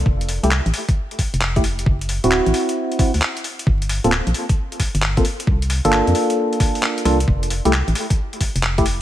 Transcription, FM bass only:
X:1
M:4/4
L:1/16
Q:"Swing 16ths" 1/4=133
K:F
V:1 name="FM bass" clef=bass
F,,,3 C,,2 A,,, z4 z F,,,4- F,,, | ^F,,,3 D,,,2 A,,, z4 z D,, z4 | G,,,3 D,,,2 B,,, z4 z G,,,3 z2 | C,,3 G,,,2 F,, z8 C,,2 |
F,,,3 C,,2 A,,, z4 z F,,,4- F,,, |]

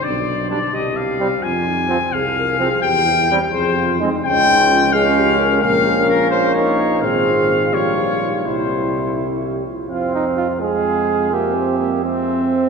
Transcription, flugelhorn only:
X:1
M:6/8
L:1/16
Q:3/8=85
K:Fdor
V:1 name="Flugelhorn"
z4 D z4 z C z | z4 C z4 z C z | z4 C z4 z C z | [K:Fm] D6 D6 |
D8 E4 | F6 F6 | =E8- E2 z2 | F2 E2 F2 A6 |
G6 C6 |]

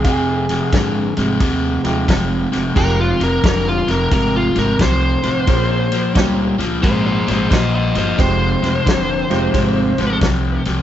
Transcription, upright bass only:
X:1
M:4/4
L:1/8
Q:"Swing" 1/4=88
K:Fm
V:1 name="Upright bass" clef=bass
F,,,2 A,,, A,,, E,, E,, F,,, F,,, | F,,, F,,, F,,, F,,, A,,, A,,, C,, =A,,, | B,,,2 D,, D,, A,,, A,,, B,,, G,,, | F,,, F,,, F,,, F,,, A,,, A,,, C,, C,, |]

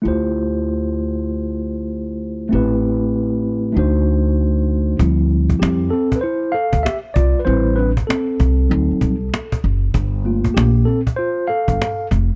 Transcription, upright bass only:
X:1
M:4/4
L:1/16
Q:"Swing 16ths" 1/4=97
K:Ddor
V:1 name="Upright bass" clef=bass
D,,16 | A,,,8 D,,8 | D,,4 F,,2 z4 z D,, z2 C,, z | A,,,4 z2 C,,2 D,, z C,,2 z2 ^F,,,2 |
G,,,4 _B,,,2 z4 z G,,, z2 F,,, z |]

